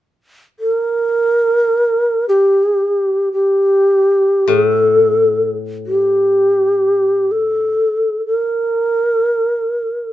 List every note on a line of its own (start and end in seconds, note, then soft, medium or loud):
0.60 2.27 A#4 medium
2.29 3.30 G4 medium
3.32 4.48 G4 medium
4.47 7.72 A2 soft
4.47 4.65 G#4 medium
4.65 5.55 A4 medium
5.87 7.33 G4 medium
7.31 8.26 A4 medium
8.26 10.13 A#4 medium